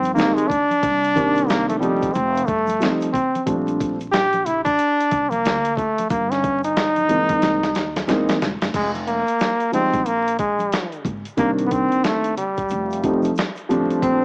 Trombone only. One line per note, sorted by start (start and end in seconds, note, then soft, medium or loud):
0.00 0.14 C4 medium
0.14 0.36 A#3 medium
0.34 0.49 G#3 medium
0.48 1.49 D4 loud
1.47 1.68 A#3 medium
1.69 1.79 A3 medium
1.80 2.15 G3 medium
2.13 2.48 C4 loud
2.46 2.88 A3 medium
3.13 3.44 C4 medium
4.12 4.47 G4 loud
4.45 4.64 E4 loud
4.65 5.31 D4 loud
5.30 5.78 A#3 loud
5.77 6.10 A3 medium
6.10 6.33 A#3 medium
6.32 6.64 C#4 medium
6.64 8.25 D#4 loud
8.76 8.90 G#3 medium
9.07 9.69 A#3 medium
9.74 10.08 C4 loud
10.07 10.39 A#3 medium
10.39 11.01 G#3 medium
11.39 11.51 A#3 medium
11.66 11.73 B3 medium
11.72 12.06 C4 loud
12.04 12.37 A3 medium
12.37 13.32 G3 medium
14.02 14.25 C4 medium